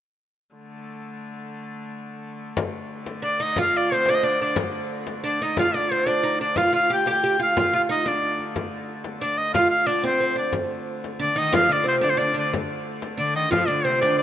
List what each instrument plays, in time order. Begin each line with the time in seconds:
0.56 hurdy-gurdy D3 A3
2.56 hurdy-gurdy D3 A3, frame drum
3.06 frame drum
3.22 oud D4, shawm D5
3.40 oud D#4, shawm D#5, frame drum
3.56 oud F4, frame drum
3.60 shawm F5
3.77 shawm D5
3.92 oud C4, shawm C5
4.06 oud D4, frame drum
4.10 shawm D5
4.14 shawm D#5
4.23 oud D4, shawm D5, frame drum
4.40 oud D4, shawm D5, frame drum
4.56 frame drum
5.07 frame drum
5.24 oud D4, shawm D5, frame drum
5.40 oud D#4, shawm D#5, frame drum
5.57 oud F4, shawm F5, frame drum
5.74 oud D4, shawm D5
5.91 oud C4, shawm C5
6.07 oud D4, shawm D5, frame drum
6.23 oud D#4
6.41 oud D4, shawm D5
6.56 hurdy-gurdy D3 A3, oud F4, shawm F5, frame drum
6.73 oud F4, shawm F5
6.90 oud G4, shawm G5
7.06 oud G4, shawm G5, frame drum
7.23 oud G4, frame drum
7.39 oud F4, shawm F5, frame drum
7.57 oud F4, shawm F5, frame drum
7.73 oud F4, shawm F5
7.89 oud D#4, shawm D#5
8.06 oud D4, shawm D5, frame drum
8.23 frame drum
8.39 frame drum
8.56 frame drum
9.04 frame drum
9.21 oud D4, shawm D5, frame drum
9.37 shawm D#5, frame drum
9.54 oud F4, shawm F5, frame drum
9.70 shawm F5, frame drum
9.86 oud D4, shawm D5, frame drum
10.03 oud C4, shawm C5, frame drum
10.20 oud C4, frame drum
10.36 oud D4, shawm D5, frame drum
10.53 hurdy-gurdy D3 A3, frame drum
11.04 frame drum
11.19 viola da gamba D3, oud D4, shawm D5, frame drum
11.36 viola da gamba D#3, oud D#4, shawm D#5, frame drum
11.52 viola da gamba F3, oud F4, shawm F5, frame drum
11.69 viola da gamba D3, oud D4, shawm D5
11.84 viola da gamba C3, oud C4
11.88 shawm C5
12.01 viola da gamba D3, oud D4, shawm D5, frame drum
12.10 shawm C5
12.17 viola da gamba D3, oud D4, shawm D5, frame drum
12.34 viola da gamba D3, oud D4, shawm D5, frame drum
12.54 frame drum
13.02 frame drum
13.18 viola da gamba D3, oud D4, shawm D5, frame drum
13.35 viola da gamba D#3, shawm D#5, frame drum
13.51 viola da gamba F3, oud F4, shawm F5, frame drum
13.67 viola da gamba D3, oud D4, shawm D5
13.84 viola da gamba C3, oud C4, shawm C5
14.01 viola da gamba D3, oud D4, shawm D5, frame drum
14.09 viola da gamba D#3
14.15 viola da gamba D3, shawm D5, frame drum